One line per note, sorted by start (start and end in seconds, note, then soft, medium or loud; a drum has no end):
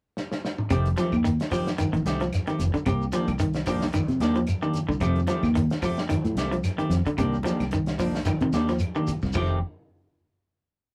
0.17 snare medium
0.32 snare medium
0.45 snare medium
0.58 mid tom medium
0.70 0.95 F1 medium
0.70 0.90 C3 medium
0.70 0.87 D#3 medium
0.70 0.88 A3 medium
0.70 0.88 C4 medium
0.70 0.88 G4 medium
0.70 kick medium
0.70 closed hi-hat medium
0.70 claves medium
0.70 shekere medium
0.86 closed hi-hat soft
0.86 high conga medium
0.86 shekere soft
0.97 1.15 D#3 medium
0.97 1.17 F3 medium
0.97 1.15 A3 medium
0.97 1.15 C4 medium
0.97 1.15 G4 medium
0.97 snare soft
0.97 closed hi-hat soft
0.97 high conga medium
0.97 shekere medium
1.11 1.37 D#2 medium
1.11 kick medium
1.11 low conga medium
1.11 claves medium
1.11 shekere soft
1.24 1.44 D#3 medium
1.24 closed hi-hat medium
1.24 shekere medium
1.40 snare medium
1.40 closed hi-hat soft
1.40 shekere soft
1.51 1.68 D#3 medium
1.51 1.71 F3 medium
1.51 1.69 C4 medium
1.51 1.69 G4 medium
1.51 kick medium
1.51 open hi-hat medium
1.51 high conga medium
1.51 low conga medium
1.51 claves medium
1.51 shekere medium
1.66 snare medium
1.66 closed hi-hat soft
1.66 shekere soft
1.78 1.89 D#3 medium
1.78 closed hi-hat medium
1.78 high conga medium
1.78 claves medium
1.78 shekere medium
1.93 2.04 A1 medium
1.93 2.13 D#3 medium
1.93 closed hi-hat soft
1.93 shekere soft
2.05 2.30 C2 medium
2.05 2.23 D#3 medium
2.05 2.23 A3 medium
2.05 2.23 C4 medium
2.05 2.23 G4 medium
2.05 snare medium
2.05 closed hi-hat soft
2.05 shekere medium
2.20 2.40 F3 medium
2.20 snare soft
2.20 closed hi-hat soft
2.20 shekere soft
2.32 snare soft
2.32 closed hi-hat medium
2.32 high conga medium
2.32 claves medium
2.32 shekere medium
2.47 2.67 D#3 medium
2.47 2.63 A3 soft
2.47 2.63 C4 soft
2.47 2.63 G4 medium
2.47 muted fingered electric bass stroke soft
2.47 closed hi-hat soft
2.47 shekere soft
2.59 2.73 F1 medium
2.59 closed hi-hat medium
2.59 high conga medium
2.59 low conga medium
2.59 shekere medium
2.74 2.83 D3 medium
2.74 kick medium
2.74 closed hi-hat soft
2.74 shekere soft
2.86 3.11 C2 loud
2.86 3.06 C3 medium
2.86 3.04 A#3 medium
2.86 3.04 G4 medium
2.86 muted clean electric guitar stroke medium
2.86 kick medium
2.86 closed hi-hat medium
2.86 claves medium
2.86 shekere medium
3.02 shekere soft
3.12 3.31 D#3 medium
3.12 3.33 F3 medium
3.12 3.31 A#3 medium
3.12 3.31 D4 medium
3.12 3.31 G4 medium
3.12 closed hi-hat soft
3.12 high conga medium
3.12 shekere medium
3.28 4.05 C2 medium
3.28 kick medium
3.28 closed hi-hat soft
3.28 claves medium
3.28 shekere soft
3.39 3.59 D#3 medium
3.39 closed hi-hat medium
3.39 shekere medium
3.54 snare medium
3.54 closed hi-hat soft
3.54 shekere soft
3.66 3.85 D#3 medium
3.66 3.87 F3 medium
3.66 3.85 A#3 medium
3.66 3.85 D4 medium
3.66 3.85 G4 medium
3.66 kick medium
3.66 snare soft
3.66 open hi-hat medium
3.66 high conga medium
3.66 low conga medium
3.66 claves medium
3.66 shekere medium
3.81 snare medium
3.81 shekere soft
3.93 4.05 D#3 medium
3.93 closed hi-hat medium
3.93 high conga medium
3.93 claves medium
3.93 shekere medium
4.08 4.19 C3 medium
4.08 closed hi-hat soft
4.08 high conga medium
4.08 shekere soft
4.20 4.45 D#2 medium
4.20 4.38 D#3 medium
4.20 4.38 A#3 medium
4.20 4.39 D4 medium
4.20 4.39 G4 medium
4.20 snare medium
4.20 closed hi-hat soft
4.20 shekere medium
4.35 4.55 F3 medium
4.35 closed hi-hat soft
4.35 shekere soft
4.47 closed hi-hat medium
4.47 high conga medium
4.47 claves medium
4.47 shekere medium
4.62 4.82 D#3 medium
4.62 4.79 A#3 soft
4.62 4.78 D4 soft
4.62 4.78 G4 medium
4.62 shekere soft
4.74 closed hi-hat soft
4.74 low conga medium
4.74 shekere medium
4.89 5.00 C2 medium
4.89 4.98 D3 medium
4.89 kick medium
4.89 shekere soft
5.00 5.26 F2 medium
5.00 5.21 C3 medium
5.00 5.19 D#3 medium
5.00 5.19 A3 medium
5.00 5.19 C4 medium
5.00 5.20 G4 medium
5.00 kick medium
5.00 closed hi-hat medium
5.00 claves medium
5.00 shekere medium
5.16 closed hi-hat soft
5.16 high conga medium
5.16 shekere soft
5.27 5.46 D#3 medium
5.27 5.48 F3 medium
5.27 5.46 A3 medium
5.27 5.47 C4 medium
5.27 5.47 G4 medium
5.27 closed hi-hat soft
5.27 high conga medium
5.27 shekere medium
5.43 5.68 D#2 medium
5.43 kick medium
5.43 snare soft
5.43 low conga medium
5.43 claves medium
5.43 shekere soft
5.55 5.75 D#3 medium
5.55 closed hi-hat medium
5.55 high conga medium
5.55 shekere medium
5.70 snare medium
5.70 closed hi-hat soft
5.70 shekere soft
5.82 6.02 F3 medium
5.82 6.01 A3 medium
5.82 6.01 C4 medium
5.82 6.01 G4 medium
5.82 muted clean electric guitar stroke medium
5.82 kick medium
5.82 open hi-hat medium
5.82 high conga medium
5.82 low conga medium
5.82 claves medium
5.82 shekere medium
5.97 snare medium
5.97 closed hi-hat soft
5.97 shekere soft
6.09 6.20 D#3 medium
6.09 closed hi-hat medium
6.09 high conga loud
6.09 claves medium
6.09 shekere medium
6.24 6.35 A2 medium
6.24 closed hi-hat soft
6.24 high conga medium
6.24 shekere soft
6.35 6.61 C2 medium
6.35 6.55 D#3 medium
6.35 6.55 A3 medium
6.35 6.55 C4 medium
6.35 6.55 G4 medium
6.35 snare medium
6.35 closed hi-hat medium
6.35 shekere medium
6.51 6.71 F3 medium
6.51 closed hi-hat soft
6.51 shekere soft
6.63 snare soft
6.63 closed hi-hat medium
6.63 high conga medium
6.63 claves medium
6.63 shekere medium
6.78 6.98 D#3 medium
6.78 6.95 A3 soft
6.78 6.95 C4 soft
6.78 6.94 G4 medium
6.78 muted fingered electric bass stroke soft
6.78 closed hi-hat soft
6.78 shekere soft
6.90 7.04 F2 medium
6.90 snare soft
6.90 closed hi-hat medium
6.90 high conga medium
6.90 low conga medium
6.90 shekere medium
7.06 7.15 D3 medium
7.06 kick medium
7.06 closed hi-hat soft
7.06 shekere soft
7.18 7.43 C2 medium
7.18 7.38 C3 medium
7.18 7.35 D#3 medium
7.18 7.36 A#3 medium
7.18 7.36 D4 medium
7.18 7.36 G4 medium
7.18 kick medium
7.18 closed hi-hat medium
7.18 claves medium
7.18 shekere medium
7.32 high conga medium
7.32 shekere soft
7.43 7.62 D#3 medium
7.43 7.64 F3 medium
7.43 7.63 A#3 medium
7.43 7.63 D4 medium
7.43 7.63 G4 medium
7.43 snare soft
7.43 closed hi-hat medium
7.43 high conga loud
7.43 shekere medium
7.60 8.37 C2 medium
7.60 snare soft
7.60 closed hi-hat soft
7.60 claves medium
7.60 shekere soft
7.71 7.92 D#3 medium
7.71 closed hi-hat medium
7.71 high conga medium
7.71 shekere medium
7.86 snare medium
7.86 closed hi-hat soft
7.86 shekere soft
7.98 8.17 D#3 medium
7.98 8.19 F3 medium
7.98 8.17 A#3 medium
7.98 8.17 D4 medium
7.98 kick medium
7.98 open hi-hat medium
7.98 high conga medium
7.98 low conga medium
7.98 claves medium
7.98 shekere medium
8.15 snare medium
8.15 shekere soft
8.25 8.37 D#3 medium
8.25 closed hi-hat medium
8.25 high conga medium
8.25 claves medium
8.25 shekere medium
8.41 8.52 C3 medium
8.41 8.62 D#3 medium
8.41 closed hi-hat soft
8.41 shekere soft
8.52 8.78 D#2 medium
8.52 8.71 D#3 medium
8.52 8.71 A#3 medium
8.52 8.71 D4 medium
8.52 8.71 G4 medium
8.52 snare medium
8.52 closed hi-hat soft
8.52 shekere medium
8.68 8.88 F3 medium
8.68 snare soft
8.68 closed hi-hat soft
8.68 shekere soft
8.79 closed hi-hat medium
8.79 high conga medium
8.79 claves medium
8.79 shekere medium
8.95 9.15 D#3 medium
8.95 9.11 A#3 soft
8.95 9.11 D4 soft
8.95 9.11 G4 medium
8.95 shekere soft
9.07 kick medium
9.07 closed hi-hat medium
9.07 high conga medium
9.07 low conga medium
9.07 shekere medium
9.22 9.34 C2 medium
9.22 kick medium
9.22 snare soft
9.22 shekere soft
9.33 9.60 F1 medium
9.33 9.57 D#3 medium
9.33 9.52 F3 medium
9.33 9.57 A3 medium
9.33 9.58 C4 medium
9.33 kick medium
9.33 crash medium
9.33 low conga medium
9.33 claves medium
9.33 shekere medium
9.37 9.58 G4 medium